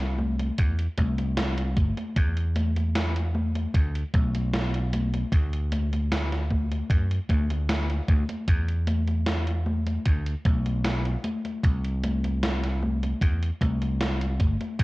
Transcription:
Already playing: C2
0.00 snare, closed hi-hat
0.19 high conga
0.40 closed hi-hat, high conga
0.58 E2, kick, closed hi-hat, high conga
0.79 closed hi-hat
0.98 C2, kick, closed hi-hat, high conga
1.18 closed hi-hat, high conga
1.37 snare, closed hi-hat, high conga
1.58 closed hi-hat
1.77 G1, kick, closed hi-hat, high conga
1.97 closed hi-hat, high conga
2.16 E2, kick, closed hi-hat, high conga
2.37 closed hi-hat
2.56 closed hi-hat, high conga
2.76 closed hi-hat, high conga
2.95 snare, closed hi-hat, high conga
3.16 closed hi-hat
3.35 high conga
3.55 closed hi-hat, high conga
3.74 D2, kick, closed hi-hat, high conga
3.95 closed hi-hat
4.14 B1, kick, closed hi-hat, high conga
4.34 closed hi-hat, high conga
4.53 snare, closed hi-hat, high conga
4.74 closed hi-hat
4.93 closed hi-hat, high conga
5.14 closed hi-hat, high conga
5.32 D2, kick, closed hi-hat, high conga
5.53 closed hi-hat
5.72 closed hi-hat, high conga
5.93 closed hi-hat, high conga
6.12 snare, closed hi-hat, high conga
6.32 snare, closed hi-hat
6.50 kick, high conga
6.72 closed hi-hat, high conga
6.90 F#2, kick, closed hi-hat, high conga
7.11 closed hi-hat
7.29 D2, kick, closed hi-hat, high conga
7.51 closed hi-hat, high conga
7.69 snare, closed hi-hat, high conga
7.90 closed hi-hat
8.08 D2, kick, closed hi-hat, high conga
8.29 closed hi-hat, high conga
8.48 E2, kick, closed hi-hat, high conga
8.69 closed hi-hat
8.87 closed hi-hat, high conga
9.08 closed hi-hat, high conga
9.27 snare, closed hi-hat, high conga
9.47 closed hi-hat
9.66 high conga
9.87 closed hi-hat, high conga
10.05 D2, kick, closed hi-hat, high conga
10.26 closed hi-hat
10.45 B1, kick, closed hi-hat, high conga
10.66 closed hi-hat, high conga
10.85 snare, closed hi-hat, high conga
11.05 closed hi-hat
11.24 closed hi-hat, high conga
11.45 closed hi-hat, high conga
11.63 C2, kick, closed hi-hat, high conga
11.84 closed hi-hat
12.03 closed hi-hat, high conga
12.24 closed hi-hat, high conga
12.43 snare, closed hi-hat, high conga
12.63 snare, closed hi-hat
12.82 high conga
13.03 closed hi-hat, high conga
13.21 E2, kick, closed hi-hat, high conga
13.42 closed hi-hat
13.61 C2, kick, closed hi-hat, high conga
13.82 closed hi-hat, high conga
14.01 snare, closed hi-hat, high conga
14.21 closed hi-hat
14.40 G1, kick, closed hi-hat, high conga
14.61 closed hi-hat, high conga
14.79 E2, kick, closed hi-hat, high conga

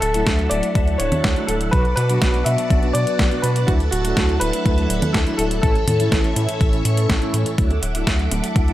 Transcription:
Already playing: A4 E5 F#5 A5
0.00 D1 A4, closed hi-hat
0.14 F#3 A3 D4 E4, closed hi-hat
0.27 D2, kick, snare, closed hi-hat
0.39 closed hi-hat
0.49 D1 F#3 A3 D4 E4 D5, closed hi-hat
0.63 closed hi-hat
0.75 D2, kick, closed hi-hat
0.87 F#3 A3 D4 E4, closed hi-hat
0.98 D1 C#5, closed hi-hat
1.12 closed hi-hat, high conga
1.24 D2, kick, snare, closed hi-hat
1.36 F#3 A3 D4 E4, closed hi-hat
1.47 D1 A4, closed hi-hat
1.61 closed hi-hat
1.71 B1 B2 F#3 B3 D4 F#4 B4 D5, kick, closed hi-hat
1.85 closed hi-hat
1.96 B2 B4, closed hi-hat
2.09 B2 F#3 B3 D4 F#4, closed hi-hat
2.22 B1, kick, snare, closed hi-hat
2.34 closed hi-hat
2.44 B2 F#3 B3 D4 F#4 E5, closed hi-hat
2.58 closed hi-hat
2.70 B1, kick, closed hi-hat
2.83 B2 F#3 B3 D4 F#4, closed hi-hat
2.93 B2 D5, closed hi-hat
3.07 closed hi-hat
3.19 B1, kick, snare, closed hi-hat
3.31 B2 F#3 B3 D4 F#4, closed hi-hat
3.42 B2 B4, closed hi-hat
3.56 closed hi-hat
3.67 D2 F#3 A3 D4 E4 F#4 A4 E5, kick, closed hi-hat
3.80 closed hi-hat
3.91 D1 F#4, closed hi-hat
4.04 F#3 A3 D4 E4, closed hi-hat
4.17 D2, kick, snare, closed hi-hat
4.29 closed hi-hat
4.40 D1 F#3 A3 D4 E4 B4, closed hi-hat
4.53 closed hi-hat
4.66 D2, kick, closed hi-hat
4.78 F#3 A3 D4 E4, closed hi-hat
4.90 D1, closed hi-hat
5.02 closed hi-hat, high conga
5.13 D2 A4, kick, snare, closed hi-hat
5.27 F#3 A3 D4 E4, closed hi-hat
5.37 D1 A4, closed hi-hat
5.51 closed hi-hat
5.62 A1 A2 E3 A3 C#4 E4 A4 C#5 E5 C#6, kick, closed hi-hat
5.75 closed hi-hat
5.87 A2, closed hi-hat, high conga
6.00 A2 E3 A3 C#4 E4, closed hi-hat
6.12 A1, kick, snare, closed hi-hat
6.24 closed hi-hat
6.36 A2 E3 A3 C#4 E4, closed hi-hat
6.49 closed hi-hat
6.61 A1, kick, closed hi-hat
6.73 A2 E3 A3 C#4 E4, closed hi-hat
6.85 A2, closed hi-hat
6.97 closed hi-hat
7.09 A1, kick, snare, closed hi-hat
7.22 A2 E3 A3 C#4 E4, closed hi-hat
7.34 A2, closed hi-hat
7.46 closed hi-hat
7.58 D2 F#3 A3 D4 E4 A4 E5 F#5 D6, kick, closed hi-hat
7.70 closed hi-hat, high conga
7.83 D1, closed hi-hat
7.95 F#3 A3 D4 E4, closed hi-hat
8.07 D2, kick, snare, closed hi-hat
8.19 closed hi-hat
8.31 D1 F#3 A3 D4 E4, closed hi-hat, high conga
8.44 closed hi-hat
8.56 D2, kick, closed hi-hat
8.68 F#3 A3 D4 E4, closed hi-hat

